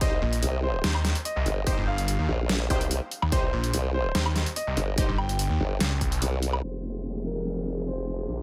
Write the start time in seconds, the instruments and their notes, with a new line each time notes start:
0.01 wobble bass C2, supersaw synth D#4 G4 C5, grand piano D#5, kick, closed hi-hat
0.22 detuned saw bass A#1
0.33 closed hi-hat
0.43 wobble bass C2, closed hi-hat
0.63 grand piano C5
0.84 detuned saw bass D#2, supersaw synth D#4 G4 C5, snare, closed hi-hat
0.95 low woodblock
1.05 snare, closed hi-hat
1.15 closed hi-hat
1.25 grand piano D#5, closed hi-hat
1.36 detuned saw bass C2
1.46 wobble bass G1, closed hi-hat
1.67 supersaw synth D#4 G4 C5, kick, closed hi-hat
1.78 detuned saw bass G1
1.87 grand piano F5
1.98 closed hi-hat
2.08 closed hi-hat
2.19 detuned saw bass D#2
2.29 wobble bass A#1
2.49 snare, closed hi-hat
2.70 wobble bass C2, supersaw synth D#4 G4 C5, kick, closed hi-hat, zap
2.81 closed hi-hat
2.91 closed hi-hat
3.11 closed hi-hat
3.22 detuned saw bass D#2, low woodblock
3.32 wobble bass C2, supersaw synth D#4 G4 C5, grand piano C5, kick, closed hi-hat
3.53 detuned saw bass A#1
3.64 closed hi-hat
3.73 wobble bass C2, closed hi-hat
3.94 grand piano C5
4.15 detuned saw bass D#2, supersaw synth D#4 G4 C5, snare, closed hi-hat
4.26 low woodblock
4.36 snare, closed hi-hat
4.46 closed hi-hat
4.56 grand piano D#5, closed hi-hat
4.67 detuned saw bass C2
4.77 wobble bass G1, closed hi-hat
4.98 supersaw synth D#4 G4 C5, kick, closed hi-hat
5.09 detuned saw bass G1
5.18 grand piano G5, low woodblock
5.29 closed hi-hat
5.39 closed hi-hat
5.50 detuned saw bass D#2
5.60 wobble bass G1
5.80 detuned saw bass C#2, snare, closed hi-hat
6.01 kick, closed hi-hat
6.12 closed hi-hat
6.22 wobble bass C2, closed hi-hat
6.43 closed hi-hat
6.53 low woodblock
6.63 wobble bass F1, string section F3 C4 G#4, grand piano C5, closed hi-hat, crash, downlifter
6.95 closed hi-hat
7.05 closed hi-hat
7.25 grand piano A#4
7.46 closed hi-hat
7.67 closed hi-hat
7.77 closed hi-hat
7.87 grand piano C5, closed hi-hat
8.08 closed hi-hat
8.29 wobble bass A#1, string section C3 C#3 A#3, closed hi-hat